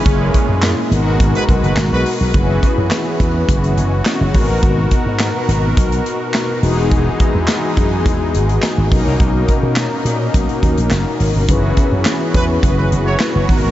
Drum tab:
HH |x-x-x-x-xxxxx-o-|x-x-x-x-xxx-x-o-|x-x-x-x-xxx-x-o-|x-x-x-x-x-xxx-o-|
CP |----x-------x---|----x-------x---|----x-------x---|----x-------x---|
SD |----o-------o---|----o-------o---|----o-------o---|----o-------o---|
BD |o-o-----o-o-----|o-o---o-o-----o-|o-o-----o-------|o-o---o-o-----o-|

HH |x-x-x-x-xxxxx-o-|x-x-x-x-x-x-x-o-|
CP |----x-------x---|----x-------x---|
SD |----o-------o---|----o-------o---|
BD |o-o-----o-o-----|o-o---o-o-----o-|